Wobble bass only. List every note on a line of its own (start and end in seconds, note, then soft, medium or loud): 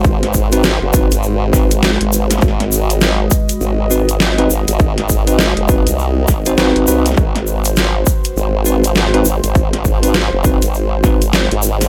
0.00 0.79 G#1 loud
0.82 1.09 F#1 loud
1.12 1.98 G#1 medium
2.01 2.41 G#1 loud
2.42 3.30 G#1 loud
3.61 4.48 G#1 loud
4.50 4.65 G#1 loud
4.68 5.54 G#1 medium
5.57 5.84 F#1 loud
5.87 6.26 C2 medium
6.28 6.56 G#1 medium
6.58 6.73 G#1 medium
6.76 6.86 G#1 loud
6.88 7.16 C2 loud
7.18 8.05 G#1 loud
8.37 9.24 G#1 loud
9.26 9.41 G#1 loud
9.44 10.30 G#1 loud
10.33 10.60 F#1 loud
10.63 11.49 G#1 loud
11.52 11.88 G#1 loud